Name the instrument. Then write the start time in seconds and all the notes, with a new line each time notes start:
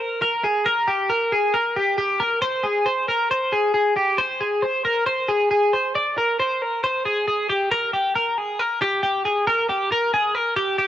clean electric guitar
0.00 A#4
0.22 A#4
0.44 G#4
0.66 A#4
0.87 G4
1.09 A#4
1.32 G#4
1.54 A#4
1.76 G4
1.98 G4
2.20 A#4
2.42 C5
2.64 G#4
2.86 C5
3.08 A#4
3.31 C5
3.53 G#4
3.74 G#4
3.97 G4
4.18 C5
4.41 G#4
4.62 C5
4.85 A#4
5.07 C5
5.29 G#4
5.51 G#4
5.73 C5
5.95 D5
6.18 A#4
6.40 C5
6.62 A#4
6.84 C5
7.05 G#4
7.28 G#4
7.50 G4
7.72 A#4
7.94 G4
8.16 A#4
8.38 G#4
8.59 A#4
8.82 G4
9.03 G4
9.26 G#4
9.47 A#4
9.69 G4
9.92 A#4
10.14 G#4
10.35 A#4
10.57 G4
10.79 G4